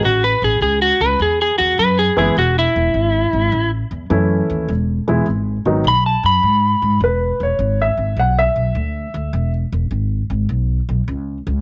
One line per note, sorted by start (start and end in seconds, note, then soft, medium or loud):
0.03 0.32 A1 medium
0.03 0.23 F#4 medium
0.24 0.42 B4 medium
0.42 0.56 A1 medium
0.42 0.61 G#4 medium
0.61 0.90 C#2 medium
0.61 0.81 G#4 medium
0.82 1.00 F#4 medium
1.00 1.14 C#2 medium
1.00 1.19 B4 medium
1.19 1.49 E2 medium
1.19 1.40 G#4 medium
1.42 1.58 G#4 medium
1.58 1.73 E2 medium
1.58 1.77 F#4 medium
1.78 2.07 F#2 medium
1.78 1.97 B4 medium
1.99 2.17 G#4 medium
2.17 2.31 F#1 medium
2.17 2.34 E3 medium
2.17 2.34 G#3 medium
2.17 2.34 B3 medium
2.17 2.34 E4 medium
2.17 2.36 G#4 medium
2.37 2.65 E1 medium
2.37 2.56 F#4 medium
2.59 3.70 E4 loud
2.76 2.90 E1 medium
2.94 3.23 G#1 medium
3.33 3.47 G#1 medium
3.52 3.81 A1 medium
3.91 4.05 E2 medium
4.10 4.39 F#2 medium
4.10 4.68 E3 medium
4.10 4.69 A3 medium
4.10 4.69 C#4 medium
4.10 4.69 E4 medium
4.50 4.64 D#2 medium
4.68 4.98 E1 medium
5.08 5.22 E1 medium
5.08 5.25 E3 medium
5.08 5.25 G#3 medium
5.08 5.25 B3 medium
5.08 5.25 E4 medium
5.26 5.56 G#1 medium
5.65 5.80 G#1 medium
5.65 5.83 D#3 medium
5.65 5.83 F#3 medium
5.65 5.83 B3 medium
5.65 5.83 D#4 medium
5.84 6.14 B1 medium
5.84 6.06 B5 medium
6.06 6.24 A5 medium
6.23 6.38 F#2 medium
6.23 7.00 B5 medium
6.43 6.72 G#2 medium
6.82 6.96 G#2 medium
7.00 7.30 E1 medium
7.00 7.40 B4 medium
7.40 7.54 E1 medium
7.40 7.79 C#5 medium
7.59 7.88 G#1 medium
7.82 8.18 E5 medium
7.97 8.12 G#1 medium
8.16 8.46 B1 medium
8.16 8.37 F#5 medium
8.39 9.50 E5 medium
8.56 8.70 B1 medium
8.75 9.04 D2 medium
9.14 9.28 D2 medium
9.33 9.62 E1 medium
9.72 9.86 E1 medium
9.91 10.20 G#1 medium
10.30 10.44 G#1 medium
10.49 10.78 B1 medium
10.89 11.03 B1 medium
11.08 11.37 C#2 medium
11.47 11.61 C#2 medium